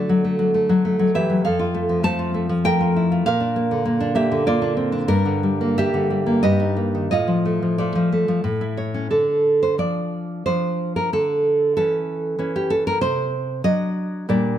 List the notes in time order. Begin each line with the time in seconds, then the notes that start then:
Already playing: D3 A3 F#4 D5
0.09 F#3
0.24 A3
0.39 F#3
0.54 A3
0.69 F#3
0.85 A3
0.99 F#3
1.15 E3 G4 E5
1.30 F#3
1.45 F2 A4 F5
1.59 F4
1.74 A3
1.89 F3
2.03 A3 C5 A5
2.19 F4
2.34 A3
2.49 F3
2.64 A3 A#4 G5
2.81 F4
2.96 E4
3.12 F4
3.26 A#2 A#4 F5
3.40 D4
3.56 A#3
3.71 D3
3.86 A#3
4.00 D4
4.15 A#3 G4 E5
4.32 D3
4.46 A#3 F4 D5
4.62 D4
4.77 C4
4.92 D4
5.08 G2 D4 A#4
5.25 D3
5.43 G3
5.61 A#3
5.78 G3 G4 E5
5.94 D3
6.10 G3
6.26 A#3
6.43 G2 G4 D#5
6.60 D#4
6.77 A#3
6.95 D#3
7.11 A2 F4 D#5
7.28 F3
7.45 A3
7.62 F3
7.78 A3 F4 D5
7.95 F3
8.13 A3
8.28 F3
8.44 A2
8.61 E4
8.77 C#5
8.94 C#4
9.11 D3 A4
9.63 C5
9.78 F3 D4 D5
10.46 F3 D4 C5
10.96 A#4
11.13 D3 A4
11.77 E3 C#4 A4
12.39 E3 C#4
12.56 G4
12.70 A4
12.87 A#4
13.01 C3 C5
13.64 F#3 D4 D#5
14.29 A#2 G3 D4 D5